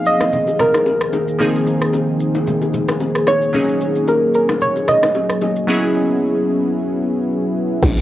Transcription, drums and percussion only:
0.06 shaker medium
0.21 cross-stick medium
0.21 low bongo medium
0.21 shaker medium
0.32 low conga medium
0.32 shaker medium
0.47 high bongo soft
0.47 shaker medium
0.59 cross-stick medium
0.59 low conga medium
0.59 shaker medium
0.74 cross-stick medium
0.74 low bongo medium
0.74 shaker soft
0.86 high bongo medium
0.86 shaker medium
1.01 cross-stick medium
1.01 shaker medium
1.13 high bongo soft
1.13 low bongo medium
1.13 shaker medium
1.28 shaker medium
1.40 low conga medium
1.40 shaker medium
1.55 shaker soft
1.67 low bongo soft
1.67 shaker medium
1.81 cross-stick medium
1.81 shaker medium
1.93 high bongo medium
1.93 shaker medium
2.20 shaker medium
2.35 low bongo medium
2.35 shaker soft
2.47 low conga medium
2.47 shaker medium
2.62 high bongo medium
2.62 shaker medium
2.74 low conga medium
2.74 shaker medium
2.88 cross-stick medium
2.88 low bongo medium
2.88 shaker soft
3.00 high bongo medium
3.00 shaker medium
3.15 cross-stick medium
3.15 shaker medium
3.27 cross-stick medium
3.27 high bongo soft
3.27 low bongo medium
3.27 shaker medium
3.42 shaker medium
3.54 low conga medium
3.54 shaker medium
3.69 shaker soft
3.81 low bongo soft
3.81 shaker medium
3.96 shaker medium
4.08 high bongo medium
4.08 shaker medium
4.34 shaker medium
4.49 cross-stick medium
4.49 low bongo medium
4.49 shaker soft
4.61 low conga medium
4.61 shaker medium
4.76 high bongo medium
4.76 shaker medium
4.88 cross-stick medium
4.88 low conga medium
4.88 shaker medium
5.03 cross-stick medium
5.03 low bongo medium
5.03 shaker soft
5.15 high bongo medium
5.15 shaker medium
5.29 cross-stick medium
5.29 shaker medium
5.41 high bongo soft
5.41 low bongo medium
5.41 shaker medium
5.56 shaker medium
7.83 kick loud
7.83 crash loud
7.83 low conga medium
7.83 shaker medium
7.98 shaker medium

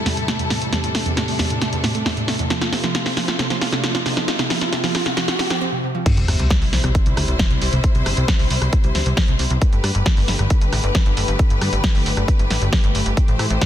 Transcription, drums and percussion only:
0.06 snare medium
0.06 open hi-hat loud
0.17 closed hi-hat soft
0.28 snare medium
0.28 closed hi-hat medium
0.39 closed hi-hat medium
0.50 snare medium
0.50 open hi-hat loud
0.62 closed hi-hat soft
0.73 snare medium
0.73 closed hi-hat medium
0.84 closed hi-hat medium
0.95 snare medium
0.95 open hi-hat loud
1.06 closed hi-hat medium
1.17 snare medium
1.17 closed hi-hat medium
1.28 open hi-hat medium
1.39 snare medium
1.39 open hi-hat loud
1.50 closed hi-hat medium
1.62 snare medium
1.62 closed hi-hat medium
1.73 closed hi-hat medium
1.84 snare medium
1.84 open hi-hat loud
1.95 closed hi-hat medium
2.06 snare medium
2.06 open hi-hat medium
2.17 closed hi-hat medium
2.28 snare medium
2.28 open hi-hat loud
2.39 closed hi-hat soft
2.50 snare medium
2.50 closed hi-hat medium
2.61 snare medium
2.61 closed hi-hat medium
2.73 snare medium
2.73 open hi-hat loud
2.84 snare medium
2.84 closed hi-hat medium
2.95 snare loud
2.95 closed hi-hat medium
3.06 snare medium
3.06 open hi-hat medium
3.17 snare loud
3.17 open hi-hat loud
3.28 snare medium
3.28 closed hi-hat medium
3.39 snare medium
3.39 closed hi-hat medium
3.50 snare medium
3.50 closed hi-hat medium
3.61 snare loud
3.61 open hi-hat loud
3.72 snare medium
3.72 closed hi-hat medium
3.84 snare loud
3.84 closed hi-hat medium
3.95 snare medium
3.95 closed hi-hat medium
4.06 snare loud
4.06 open hi-hat loud
4.17 snare medium
4.17 closed hi-hat medium
4.28 snare loud
4.28 closed hi-hat medium
4.39 snare medium
4.39 closed hi-hat medium
4.50 snare loud
4.50 open hi-hat loud
4.61 snare medium
4.61 closed hi-hat medium
4.73 snare loud
4.73 closed hi-hat medium
4.84 snare medium
4.84 open hi-hat medium
4.95 snare loud
4.95 open hi-hat loud
5.06 snare medium
5.06 closed hi-hat medium
5.17 snare loud
5.17 closed hi-hat medium
5.28 snare medium
5.28 closed hi-hat medium
5.39 snare loud
5.39 open hi-hat loud
5.50 snare loud
5.50 closed hi-hat medium
6.06 kick loud
6.06 closed hi-hat medium
6.06 crash loud
6.17 closed hi-hat medium
6.28 cross-stick medium
6.28 open hi-hat loud
6.39 closed hi-hat medium
6.50 kick loud
6.50 snare loud
6.50 closed hi-hat medium
6.62 open hi-hat medium
6.73 snare medium
6.73 open hi-hat loud
6.84 cross-stick medium
6.84 closed hi-hat medium
6.95 kick loud
6.95 closed hi-hat medium
7.06 closed hi-hat medium
7.17 cross-stick medium
7.17 open hi-hat loud
7.28 closed hi-hat medium
7.39 kick loud
7.39 snare loud
7.39 closed hi-hat medium
7.51 closed hi-hat medium
7.62 open hi-hat loud
7.73 closed hi-hat medium
7.84 kick loud
7.84 closed hi-hat medium
7.95 closed hi-hat medium
8.06 cross-stick medium
8.06 open hi-hat loud
8.17 closed hi-hat medium
8.28 kick loud
8.28 snare loud
8.28 closed hi-hat medium
8.39 open hi-hat medium
8.50 open hi-hat loud
8.62 cross-stick medium
8.62 closed hi-hat medium
8.73 kick loud
8.73 closed hi-hat medium
8.84 closed hi-hat medium
8.95 snare medium
8.95 open hi-hat loud
9.06 closed hi-hat medium
9.17 kick loud
9.17 snare loud
9.17 open hi-hat medium
9.28 closed hi-hat medium
9.39 open hi-hat loud
9.50 closed hi-hat medium
9.62 kick loud
9.62 closed hi-hat medium
9.73 closed hi-hat medium
9.84 cross-stick medium
9.84 open hi-hat loud
9.95 closed hi-hat medium
10.06 kick loud
10.06 snare loud
10.06 closed hi-hat medium
10.17 open hi-hat medium
10.28 snare medium
10.28 open hi-hat loud
10.39 cross-stick medium
10.39 closed hi-hat medium
10.50 kick loud
10.50 closed hi-hat medium
10.61 closed hi-hat medium
10.73 cross-stick medium
10.73 open hi-hat loud
10.84 closed hi-hat medium
10.95 kick loud
10.95 snare loud
10.95 closed hi-hat medium
11.06 closed hi-hat medium
11.17 open hi-hat loud
11.28 closed hi-hat medium
11.39 kick loud
11.39 closed hi-hat medium
11.50 closed hi-hat medium
11.61 cross-stick medium
11.61 open hi-hat loud
11.73 closed hi-hat soft
11.84 kick loud
11.84 snare loud
11.84 closed hi-hat medium
11.95 open hi-hat medium
12.06 open hi-hat loud
12.17 cross-stick medium
12.17 closed hi-hat soft
12.28 kick loud
12.28 closed hi-hat medium
12.39 closed hi-hat soft
12.50 snare medium
12.50 open hi-hat loud
12.62 closed hi-hat medium
12.73 kick loud
12.73 snare loud
12.73 open hi-hat medium
12.84 closed hi-hat medium
12.95 open hi-hat loud
13.06 closed hi-hat soft
13.17 kick loud
13.17 closed hi-hat medium
13.28 closed hi-hat soft
13.39 cross-stick medium
13.39 open hi-hat loud
13.50 closed hi-hat medium
13.61 kick loud
13.61 snare loud
13.61 closed hi-hat medium

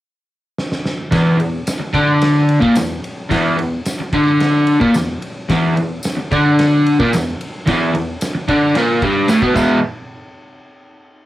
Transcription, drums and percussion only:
0.58 snare medium
0.72 snare medium
0.86 snare medium
1.12 kick loud
1.12 snare loud
1.12 ride loud
1.40 ride medium
1.67 snare loud
1.67 ride medium
1.67 tambourine medium
1.94 kick medium
1.94 ride medium
2.22 snare loud
2.22 ride loud
2.49 ride medium
2.62 kick loud
2.75 snare loud
2.75 ride loud
2.75 tambourine medium
3.04 ride medium
3.31 kick loud
3.31 snare loud
3.31 ride loud
3.59 ride medium
3.85 snare loud
3.85 ride medium
3.85 tambourine medium
4.13 kick loud
4.13 ride medium
4.40 snare loud
4.40 ride medium
4.67 ride medium
4.81 kick loud
4.94 snare loud
4.94 ride medium
4.94 tambourine medium
5.22 ride medium
5.50 kick medium
5.50 snare loud
5.50 ride loud
5.77 ride medium
6.03 snare loud
6.03 ride loud
6.03 tambourine medium
6.32 kick loud
6.32 ride medium
6.59 snare loud
6.59 ride loud
6.86 ride medium
7.00 kick loud
7.13 snare loud
7.13 ride loud
7.13 tambourine medium
7.41 ride medium
7.67 kick loud
7.67 snare loud
7.67 ride medium
7.95 ride medium
8.21 snare loud
8.21 ride medium
8.21 tambourine loud
8.49 kick loud
8.49 ride medium
8.75 snare loud
8.75 ride medium
9.02 kick loud
9.02 ride medium
9.28 snare loud
9.28 ride loud
9.28 tambourine medium
9.42 kick loud
9.56 kick loud
9.56 crash medium
9.56 tambourine medium

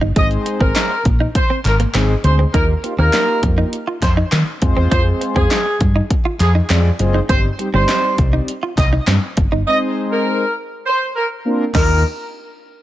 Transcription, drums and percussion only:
0.16 kick loud
0.16 closed hi-hat loud
0.31 closed hi-hat soft
0.46 closed hi-hat medium
0.61 kick medium
0.76 snare medium
0.76 clap medium
0.76 clap loud
0.76 closed hi-hat medium
1.05 kick loud
1.05 closed hi-hat medium
1.35 kick loud
1.35 closed hi-hat loud
1.65 clap medium
1.65 closed hi-hat medium
1.80 closed hi-hat medium
1.94 snare medium
1.94 clap medium
1.94 clap loud
1.94 closed hi-hat medium
2.24 closed hi-hat medium
2.54 kick loud
2.54 closed hi-hat loud
2.84 closed hi-hat medium
3.13 snare loud
3.13 clap medium
3.13 clap loud
3.13 closed hi-hat medium
3.43 kick medium
3.43 closed hi-hat medium
3.73 closed hi-hat loud
4.02 kick medium
4.02 clap medium
4.02 closed hi-hat medium
4.32 snare medium
4.32 clap medium
4.32 clap loud
4.32 closed hi-hat medium
4.62 kick loud
4.62 closed hi-hat medium
4.92 kick loud
4.92 closed hi-hat loud
5.21 closed hi-hat medium
5.36 kick loud
5.51 snare medium
5.51 clap medium
5.51 clap loud
5.51 closed hi-hat medium
5.81 kick loud
5.81 closed hi-hat medium
6.11 kick loud
6.11 closed hi-hat loud
6.40 clap medium
6.40 closed hi-hat medium
6.70 snare medium
6.70 clap medium
6.70 clap loud
6.70 closed hi-hat medium
6.99 closed hi-hat medium
7.29 kick loud
7.29 closed hi-hat loud
7.59 closed hi-hat medium
7.89 snare medium
7.89 clap medium
7.89 clap loud
7.89 closed hi-hat medium
8.18 kick loud
8.18 closed hi-hat medium
8.48 closed hi-hat loud
8.78 kick medium
8.78 clap medium
8.78 closed hi-hat medium
9.08 snare medium
9.08 clap loud
9.08 clap medium
9.08 closed hi-hat medium
9.37 kick loud
9.37 closed hi-hat medium
11.75 kick loud
11.75 clap medium
11.75 crash medium

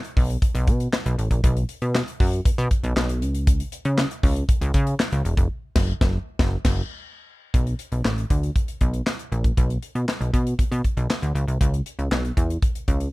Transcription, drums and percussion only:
0.05 closed hi-hat medium
0.17 kick loud
0.17 open hi-hat medium
0.30 closed hi-hat soft
0.42 kick loud
0.42 closed hi-hat medium
0.55 closed hi-hat medium
0.67 kick medium
0.67 closed hi-hat medium
0.80 closed hi-hat medium
0.93 snare loud
0.93 clap medium
1.06 closed hi-hat medium
1.19 closed hi-hat medium
1.31 kick medium
1.31 closed hi-hat medium
1.44 kick loud
1.44 closed hi-hat loud
1.57 closed hi-hat medium
1.69 closed hi-hat medium
1.82 closed hi-hat soft
1.95 snare loud
1.95 clap medium
2.08 closed hi-hat medium
2.20 kick loud
2.20 open hi-hat medium
2.33 closed hi-hat medium
2.45 kick loud
2.45 closed hi-hat medium
2.58 closed hi-hat medium
2.71 kick medium
2.71 closed hi-hat medium
2.84 closed hi-hat medium
2.97 snare loud
2.97 clap medium
3.09 closed hi-hat medium
3.22 closed hi-hat medium
3.35 closed hi-hat medium
3.47 kick loud
3.47 closed hi-hat loud
3.60 closed hi-hat medium
3.72 closed hi-hat medium
3.85 closed hi-hat medium
3.98 snare loud
3.98 clap loud
4.11 closed hi-hat medium
4.23 kick medium
4.23 open hi-hat medium
4.36 closed hi-hat medium
4.49 kick loud
4.49 closed hi-hat medium
4.62 closed hi-hat medium
4.74 kick medium
4.74 closed hi-hat medium
4.87 closed hi-hat medium
5.00 snare loud
5.00 clap medium
5.12 closed hi-hat medium
5.25 closed hi-hat medium
5.37 kick medium
5.37 closed hi-hat medium
5.76 kick loud
5.76 snare loud
5.76 crash medium
6.01 kick loud
6.01 snare loud
6.39 kick loud
6.39 snare loud
6.65 kick loud
6.65 snare loud
6.65 crash medium
7.54 kick loud
7.54 closed hi-hat medium
7.67 closed hi-hat soft
7.79 closed hi-hat medium
7.92 closed hi-hat soft
8.05 snare loud
8.05 clap medium
8.18 closed hi-hat soft
8.30 kick medium
8.30 closed hi-hat medium
8.43 closed hi-hat soft
8.56 kick loud
8.56 closed hi-hat medium
8.68 closed hi-hat medium
8.81 kick medium
8.81 closed hi-hat medium
8.94 closed hi-hat soft
9.07 snare loud
9.07 clap medium
9.19 closed hi-hat medium
9.32 closed hi-hat medium
9.44 kick medium
9.44 closed hi-hat medium
9.57 kick loud
9.57 closed hi-hat medium
9.70 closed hi-hat medium
9.83 closed hi-hat medium
9.95 closed hi-hat soft
10.09 snare medium
10.09 clap medium
10.21 closed hi-hat medium
10.34 kick medium
10.34 closed hi-hat medium
10.47 closed hi-hat medium
10.59 kick loud
10.59 closed hi-hat medium
10.72 closed hi-hat medium
10.84 kick medium
10.84 closed hi-hat medium
10.97 closed hi-hat soft
11.10 snare loud
11.10 clap medium
11.23 closed hi-hat medium
11.36 closed hi-hat medium
11.48 closed hi-hat soft
11.61 kick loud
11.61 closed hi-hat loud
11.74 closed hi-hat medium
11.86 closed hi-hat medium
11.99 closed hi-hat soft
12.12 snare loud
12.12 clap medium
12.25 closed hi-hat medium
12.37 kick medium
12.37 closed hi-hat medium
12.50 closed hi-hat soft
12.62 kick loud
12.62 closed hi-hat medium
12.75 closed hi-hat medium
12.88 kick medium
12.88 closed hi-hat medium
13.00 closed hi-hat medium

